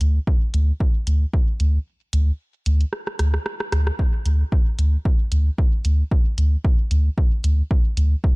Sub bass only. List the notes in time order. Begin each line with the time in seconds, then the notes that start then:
0.01 D2
0.54 D2
1.07 D2
1.60 D2
2.13 D2
2.66 D2
3.19 D2
3.72 D2
4.26 D2
4.79 D2
5.32 D2
5.85 D2
6.38 D2
6.91 D2
7.44 D2
7.97 D2